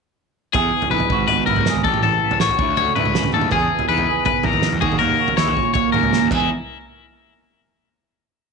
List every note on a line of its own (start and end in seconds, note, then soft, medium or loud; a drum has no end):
0.53 0.70 E2 medium
0.53 1.10 E2 medium
0.53 0.90 G#4 medium
0.53 1.08 G#4 medium
0.53 kick loud
0.53 floor tom medium
0.73 1.08 E3 medium
0.82 floor tom medium
0.90 0.99 A#1 medium
0.90 1.08 D#4 medium
0.90 1.26 B4 medium
1.00 floor tom medium
1.10 1.41 G#1 medium
1.10 1.83 G#2 medium
1.10 1.48 F#4 medium
1.10 kick loud
1.28 1.82 B3 medium
1.28 1.46 B4 medium
1.28 floor tom medium
1.46 1.55 G#1 medium
1.46 1.58 E4 medium
1.46 1.84 A#4 medium
1.46 kick medium
1.46 mid tom medium
1.56 1.72 F#1 medium
1.56 1.66 F#4 medium
1.56 floor tom medium
1.66 1.84 G#4 medium
1.66 snare medium
1.73 1.82 G#1 medium
1.73 floor tom medium
1.84 2.00 A1 loud
1.84 2.60 A2 medium
1.84 2.42 G4 medium
1.84 2.02 A4 medium
1.84 kick loud
1.94 mid tom medium
2.01 2.18 A1 medium
2.01 2.57 E3 medium
2.01 2.40 A4 medium
2.01 floor tom medium
2.24 2.33 B3 medium
2.31 2.60 C#4 soft
2.31 floor tom medium
2.40 2.48 A1 loud
2.40 2.57 F#4 medium
2.40 2.76 C#5 medium
2.40 snare medium
2.49 floor tom medium
2.59 2.90 D2 medium
2.59 3.34 D3 medium
2.59 2.70 E4 medium
2.59 kick loud
2.70 2.97 F#4 medium
2.77 3.51 A3 medium
2.77 2.95 C#5 medium
2.77 floor tom medium
2.95 3.04 D2 medium
2.95 3.07 E4 medium
2.95 3.33 B4 medium
2.95 mid tom medium
3.05 3.21 C#2 medium
3.05 3.53 F#4 medium
3.05 floor tom medium
3.15 3.35 C#3 medium
3.15 snare medium
3.23 3.32 D2 medium
3.23 floor tom medium
3.23 mid tom medium
3.32 3.49 D#2 medium
3.32 3.53 D3 medium
3.32 3.52 A4 medium
3.32 mid tom medium
3.41 mid tom medium
3.51 3.67 E2 medium
3.51 4.83 E2 medium
3.51 3.88 G#4 medium
3.51 4.08 G#4 medium
3.51 kick medium
3.51 floor tom medium
3.71 4.44 E3 medium
3.79 floor tom medium
3.89 4.05 E2 medium
3.89 5.42 D#4 medium
3.89 4.24 B4 medium
3.98 floor tom medium
4.09 4.80 G#4 medium
4.25 4.44 B2 medium
4.25 4.45 B4 medium
4.25 kick loud
4.25 floor tom medium
4.43 4.52 E2 medium
4.43 4.80 E3 medium
4.43 4.81 A#4 medium
4.43 kick medium
4.43 mid tom medium
4.53 4.70 D#2 medium
4.53 floor tom medium
4.62 4.81 G#3 medium
4.62 snare medium
4.72 4.81 E2 medium
4.72 floor tom medium
4.81 4.98 D#2 medium
4.81 6.28 D#3 medium
4.81 5.19 F#4 medium
4.81 4.98 G#4 medium
4.81 kick loud
4.92 mid tom medium
4.99 5.16 D#2 medium
4.99 5.73 A#3 medium
4.99 5.37 A#4 medium
4.99 floor tom medium
5.20 5.38 F#4 medium
5.28 floor tom medium
5.37 5.54 D#2 medium
5.37 5.48 E4 medium
5.37 5.72 C#5 medium
5.37 snare medium
5.48 6.32 F#4 soft
5.48 floor tom medium
5.57 6.29 A#2 medium
5.57 kick medium
5.74 6.11 A#3 medium
5.74 5.92 C#5 medium
5.74 kick loud
5.74 floor tom medium
5.92 6.02 D#2 medium
5.92 6.29 C#4 medium
5.92 6.30 A#4 medium
5.92 mid tom medium
6.03 6.19 C#2 medium
6.03 floor tom medium
6.12 6.29 A#3 medium
6.12 snare medium
6.22 6.30 D#2 medium
6.30 6.48 E2 medium
6.30 6.48 E3 medium
6.30 6.49 G#3 medium
6.30 6.49 D#4 medium
6.30 6.49 E4 medium
6.30 6.49 G#4 medium
6.30 kick medium
6.30 crash medium